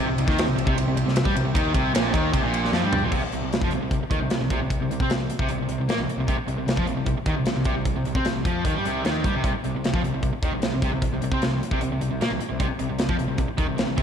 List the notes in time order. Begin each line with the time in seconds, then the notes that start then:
Already playing: C4 G4 E5
0.06 C2 C3
0.16 C2 C3, ride
0.25 D#2 D#3, kick
0.29 D#3, snare
0.38 snare, ride
0.45 C2 C3
0.55 C2 C3, ride
0.65 C2 C3, kick
0.75 C2 C3, ride
0.85 C2 C3
0.94 C2 C3, ride
1.04 C2 C3
1.08 snare
1.16 snare, ride
1.24 G2 G3, kick
1.34 C2 C3, ride
1.45 C2 C3
1.54 D#2 D#3, kick, ride
1.74 C2 C3, kick, ride
1.94 A#1 A#2, snare, ride
2.14 D#2 D#3, kick, ride
2.33 C2 C3, kick, ride
2.43 A#1 A#2
2.54 ride
2.65 snare
2.72 F2 F3, snare
2.83 G2 G3
2.93 floor tom
3.03 A#1 A#2
3.12 C2 C3, kick, crash
3.23 muted overdriven electric guitar stroke, muted picked electric bass stroke, muted distorted electric guitar stroke
3.32 C2 C3, closed hi-hat
3.42 C2 C3
3.53 C2 C3, snare, closed hi-hat
3.61 F2 F3, kick
3.71 C2 C3, closed hi-hat
3.81 C2 C3
3.91 C2 C3, kick, closed hi-hat
4.01 muted picked electric bass stroke, muted distorted electric guitar stroke, muted overdriven electric guitar stroke
4.11 D#2 D#3, kick, closed hi-hat
4.21 C2 C3
4.30 C2 C3, snare, closed hi-hat
4.41 C2 C3
4.50 C2 C3, kick, closed hi-hat
4.61 C2 C3
4.70 kick, closed hi-hat
4.80 C2 C3
4.90 C2 C3, closed hi-hat
5.00 C3 C4, kick
5.09 C2 C3, snare, closed hi-hat
5.30 closed hi-hat
5.39 C2 C3, kick
5.49 C2 C3, closed hi-hat
5.59 C2 C3
5.69 C2 C3, closed hi-hat
5.78 C2 C3
5.88 A#2 A#3, snare, closed hi-hat
5.98 C2 C3
6.08 muted overdriven electric guitar stroke, muted picked electric bass stroke, muted distorted electric guitar stroke, closed hi-hat
6.17 C2 C3
6.27 C2 C3, kick, closed hi-hat
6.37 muted picked electric bass stroke, muted overdriven electric guitar stroke, muted distorted electric guitar stroke
6.47 C2 C3, closed hi-hat
6.56 C2 C3
6.66 C2 C3, snare, closed hi-hat
6.76 F2 F3, kick
6.86 C2 C3, closed hi-hat
6.96 C2 C3
7.06 C2 C3, kick, closed hi-hat
7.17 muted picked electric bass stroke, muted overdriven electric guitar stroke, muted distorted electric guitar stroke
7.26 D#2 D#3, kick, closed hi-hat
7.36 C2 C3
7.46 C2 C3, snare, closed hi-hat
7.56 C2 C3
7.64 C2 C3, kick, closed hi-hat
7.75 C2 C3
7.85 kick, closed hi-hat
7.96 C2 C3
8.05 C2 C3, closed hi-hat
8.15 C3 C4, kick
8.25 C2 C3, snare, closed hi-hat
8.45 F2 F3, kick, closed hi-hat
8.65 D#2 D#3, kick, closed hi-hat
8.74 G2 G3
8.85 C2 C3, closed hi-hat
9.03 D#2 D#3, snare, closed hi-hat
9.24 G2 G3, kick, closed hi-hat
9.33 C2 C3
9.43 C2 C3, kick, closed hi-hat
9.54 muted distorted electric guitar stroke, muted overdriven electric guitar stroke, muted picked electric bass stroke
9.64 C2 C3, closed hi-hat
9.74 C2 C3
9.84 C2 C3, snare, closed hi-hat
9.93 F2 F3, kick
10.03 C2 C3, closed hi-hat
10.14 C2 C3
10.23 C2 C3, kick, closed hi-hat
10.33 muted overdriven electric guitar stroke, muted distorted electric guitar stroke, muted picked electric bass stroke
10.42 D#2 D#3, kick, closed hi-hat
10.53 C2 C3
10.62 C2 C3, snare, closed hi-hat
10.73 C2 C3
10.82 C2 C3, kick, closed hi-hat
10.92 C2 C3
11.02 kick, closed hi-hat
11.12 C2 C3
11.22 C2 C3, closed hi-hat
11.31 C3 C4, kick
11.41 C2 C3, snare, closed hi-hat
11.63 closed hi-hat
11.71 C2 C3, kick
11.80 C2 C3, closed hi-hat
11.91 C2 C3
12.01 C2 C3, closed hi-hat
12.12 C2 C3
12.21 A#2 A#3, snare, closed hi-hat
12.31 C2 C3
12.39 muted distorted electric guitar stroke, muted overdriven electric guitar stroke, muted picked electric bass stroke, closed hi-hat
12.51 C2 C3
12.60 C2 C3, kick, closed hi-hat
12.68 muted distorted electric guitar stroke, muted picked electric bass stroke, muted overdriven electric guitar stroke
12.79 C2 C3, closed hi-hat
12.90 C2 C3
12.99 C2 C3, snare, closed hi-hat
13.09 F2 F3, kick
13.19 C2 C3, closed hi-hat
13.28 C2 C3
13.38 C2 C3, kick, closed hi-hat
13.47 muted overdriven electric guitar stroke, muted distorted electric guitar stroke, muted picked electric bass stroke
13.57 D#2 D#3, kick, closed hi-hat
13.67 C2 C3
13.78 C2 C3, snare, closed hi-hat
13.87 C2 C3
13.96 C2 C3, kick, closed hi-hat